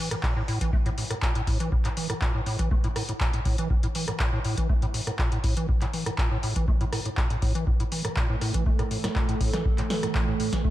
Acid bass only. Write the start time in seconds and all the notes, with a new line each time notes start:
0.11 A2
0.23 A#2
0.36 A2
0.48 A2
0.61 E3
0.73 A3
0.86 A2
0.98 A2
1.11 A2
1.23 A#2
1.35 A2
1.47 A2
1.60 E3
1.72 A2
1.85 A2
1.97 E3
2.10 A2
2.22 A#2
2.35 A2
2.46 A2
2.59 E3
2.71 A3
2.84 A2
2.96 A2
3.09 A2
3.21 A#2
3.34 A2
3.46 A2
3.59 E3
3.71 A2
3.83 A2
3.95 E3
4.08 A2
4.20 A#2
4.33 A2
4.45 A2
4.58 E3
4.69 A3
4.82 A2
4.94 A2
5.07 A2
5.19 A#2
5.32 A2
5.44 A2
5.57 E3
5.69 A2
5.82 A2
5.94 E3
6.06 A2
6.18 A#2
6.31 A2
6.43 A2
6.56 E3
6.68 A3
6.81 A2
6.93 A2
7.06 A2
7.17 A#2
7.30 A2
7.42 A2
7.55 E3
7.67 A2
7.80 A2
7.92 E3
8.05 A2
8.17 A#2
8.30 A2
8.42 A2
8.54 E3
8.66 A3
8.79 A2
8.91 A2
9.04 A2
9.16 A#2
9.29 A2
9.41 A2
9.54 E3
9.66 A2
9.78 A2
9.90 E3
10.03 A2
10.15 A#2
10.28 A2
10.40 A2
10.53 E3
10.65 A3